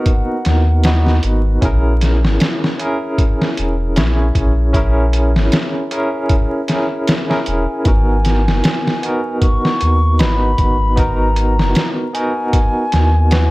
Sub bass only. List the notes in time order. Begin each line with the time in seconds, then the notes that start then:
0.46 D#2
1.24 G#1
1.63 A#1
2.23 G#1
3.58 E1
3.97 A#1
4.35 A#1
5.35 G#1
7.47 E1
7.86 G#1
8.48 F#1
9.82 D#2
10.21 G#1
10.58 G#1
11.60 F#1
12.93 D#2